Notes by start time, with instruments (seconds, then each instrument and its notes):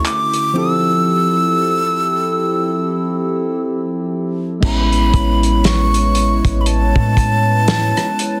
Already playing: analog synth pad D3 A3 C#4 E4
0.05 flute D6, clap, closed hi-hat
0.33 closed hi-hat
0.53 tine electric piano F3 C4 E4 G4, analog synth pad F3 C4 E4 G4 A4, flute E6
0.58 tine electric piano A4
4.61 808-style bass A1, tine electric piano G#3 B3 C#4 E4, analog synth pad G#3 E4 B4 C#5, flute B5, kick, crash
4.92 closed hi-hat
5.14 808-style bass A1, kick, closed hi-hat
5.43 closed hi-hat
5.64 flute C#6, snare, closed hi-hat
5.94 closed hi-hat
6.15 closed hi-hat
6.45 808-style bass A1, kick, closed hi-hat
6.61 flute B5
6.66 flute A5, closed hi-hat
6.96 808-style bass A2, kick
7.17 kick, closed hi-hat
7.68 snare, closed hi-hat
7.97 cross-stick, closed hi-hat
8.19 closed hi-hat